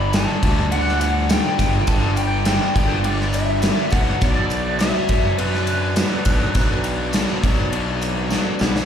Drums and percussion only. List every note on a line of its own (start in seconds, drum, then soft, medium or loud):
0.13 snare loud
0.13 ride loud
0.13 tambourine medium
0.43 kick medium
0.43 ride medium
0.72 ride loud
0.89 snare soft
1.01 ride medium
1.01 tambourine medium
1.29 snare loud
1.29 ride loud
1.29 tambourine loud
1.59 kick medium
1.59 ride medium
1.59 tambourine medium
1.87 kick loud
1.87 ride loud
1.87 tambourine medium
2.16 ride medium
2.16 tambourine medium
2.45 snare loud
2.45 ride loud
2.45 tambourine loud
2.76 kick loud
2.76 ride medium
3.04 ride loud
3.21 snare soft
3.33 ride medium
3.33 tambourine medium
3.62 snare loud
3.62 ride loud
3.62 tambourine loud
3.90 kick loud
3.90 ride medium
3.90 tambourine medium
4.21 kick loud
4.21 ride loud
4.21 tambourine medium
4.50 ride medium
4.50 tambourine medium
4.79 snare loud
4.79 ride loud
4.79 tambourine medium
5.09 kick medium
5.09 ride medium
5.38 ride loud
5.55 snare soft
5.67 ride medium
5.67 tambourine medium
5.96 snare loud
5.96 ride loud
5.96 tambourine loud
6.25 kick loud
6.25 ride loud
6.25 tambourine medium
6.55 kick loud
6.55 ride loud
6.55 tambourine medium
6.84 ride medium
6.84 tambourine medium
7.13 snare loud
7.13 ride loud
7.13 tambourine loud
7.44 kick loud
7.44 ride medium
7.72 ride loud
7.72 tambourine soft
8.01 ride medium
8.01 tambourine medium
8.30 snare medium
8.30 tambourine loud
8.59 snare loud
8.59 tambourine medium
8.76 snare loud